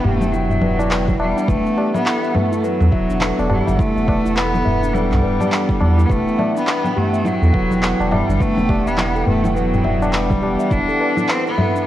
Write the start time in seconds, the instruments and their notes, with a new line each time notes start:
Already playing: analog synth pad E3 B3 F#5 G5
0.04 sub bass E1, cello A3, steel tongue drum G4, tabla ge
0.21 steel tongue drum E5, low conga, cabasa
0.33 cello F#3, steel tongue drum E4, cabasa
0.49 steel tongue drum E5, tabla tin, tabla ge, cabasa
0.62 sub bass E1, steel tongue drum B4, tabla tin, low conga
0.79 steel tongue drum E4, tabla na, cabasa
0.91 steel tongue drum B4, clap, cabasa
1.08 steel tongue drum E4, kick, low conga, cabasa
1.19 sub bass E1, cello G3, steel tongue drum E5, tabla na
1.37 steel tongue drum D4, cabasa
1.48 sub bass E1, cello A3, analog synth pad A4, steel tongue drum B4, kick, low conga, cabasa
1.66 steel tongue drum B3, cabasa
1.77 steel tongue drum G4, tabla na, tabla tin
1.94 cello B3, steel tongue drum E5, low conga, cabasa
2.06 steel tongue drum E4, clap, cabasa
2.23 steel tongue drum E5, cabasa
2.35 cello A3, steel tongue drum B4, low conga, tabla ge
2.52 steel tongue drum E4, cabasa
2.64 cello F#3, steel tongue drum B4, cabasa
2.81 sub bass E2, steel tongue drum E4, low conga, cabasa
2.92 sub bass D1, steel tongue drum E5, kick
3.09 sub bass E1, steel tongue drum D4, cabasa
3.21 steel tongue drum B4, clap, low conga, cabasa
3.38 sub bass E1, steel tongue drum B3, tabla na, cabasa
3.50 cello G3, steel tongue drum G4, tabla na, tabla tin, tabla ge
3.67 sub bass G1, steel tongue drum E5, low conga, cabasa
3.78 cello A3, steel tongue drum E4, kick, cabasa
3.96 sub bass E1, steel tongue drum E5, cabasa
4.08 steel tongue drum B4, kick, tabla na, tabla tin, low conga
4.25 sub bass E1, steel tongue drum E4, cabasa
4.36 cello B3, steel tongue drum B4, clap, cabasa
4.54 steel tongue drum E4, low conga, cabasa
4.65 sub bass E1, steel tongue drum E5, tabla ge
4.83 steel tongue drum D4, cabasa
4.94 cello G3, steel tongue drum B4, low conga, cabasa
5.12 sub bass B1, steel tongue drum B3, clap, tabla tin, tabla ge, cabasa
5.23 sub bass D1, steel tongue drum B4, tabla tin
5.40 steel tongue drum G4, tabla na, low conga, cabasa
5.52 steel tongue drum D4, clap, cabasa
5.69 steel tongue drum E4, kick, cabasa
5.80 sub bass E2, cello G3, steel tongue drum B3, tabla na, low conga
5.98 steel tongue drum E4, cabasa
6.06 sub bass E1, cello B3, steel tongue drum B4, kick
6.10 cello A3, analog synth pad G5, cabasa
6.26 steel tongue drum E4, cabasa
6.38 steel tongue drum E5, tabla na, tabla tin, low conga
6.56 cello B3, steel tongue drum D4, cabasa
6.67 steel tongue drum B4, clap, cabasa
6.84 steel tongue drum B3, low conga, cabasa
6.96 cello A3, steel tongue drum G4, tabla ge
7.13 steel tongue drum E5, cabasa
7.25 cello F#3, steel tongue drum E4, low conga, cabasa
7.42 sub bass E2, steel tongue drum A4, cabasa
7.54 sub bass D1, steel tongue drum B4, kick
7.71 sub bass E1, steel tongue drum E4, low conga, cabasa
7.83 steel tongue drum B4, clap, cabasa
8.00 sub bass E1, steel tongue drum E4, tabla na, cabasa
8.11 cello G3, steel tongue drum E5, tabla na, tabla tin, low conga, tabla ge
8.29 sub bass G1, steel tongue drum D4, cabasa
8.40 cello A3, steel tongue drum B4, kick, cabasa
8.57 sub bass E1, steel tongue drum B3, low conga, cabasa
8.69 steel tongue drum G4, kick, tabla na, tabla tin
8.86 sub bass E1, cello B3, steel tongue drum E5, cabasa
8.98 steel tongue drum E4, clap, low conga, cabasa
9.16 steel tongue drum A4, cabasa
9.27 sub bass E1, cello A3, steel tongue drum B4, tabla ge
9.44 steel tongue drum E4, low conga, cabasa
9.56 cello F#3, steel tongue drum B4, cabasa
9.73 steel tongue drum E4, tabla tin, tabla ge, cabasa
9.84 sub bass E1, steel tongue drum E5, tabla tin, low conga
10.01 steel tongue drum D4, tabla na, cabasa
10.13 cello G3, steel tongue drum B4, clap, cabasa
10.30 steel tongue drum B3, kick, low conga, cabasa
10.42 sub bass E1, steel tongue drum G4, tabla na
10.59 steel tongue drum E5, cabasa
10.71 sub bass E1, cello D4, steel tongue drum E4, analog synth pad A4, kick, low conga, cabasa
10.88 steel tongue drum A4, cabasa
11.00 steel tongue drum B4, tabla na, tabla tin
11.17 steel tongue drum E4, low conga, cabasa
11.28 cello C4, steel tongue drum B4, clap, cabasa
11.46 cello B3, steel tongue drum E4, cabasa
11.58 steel tongue drum E5, low conga, tabla ge
11.75 steel tongue drum D4, cabasa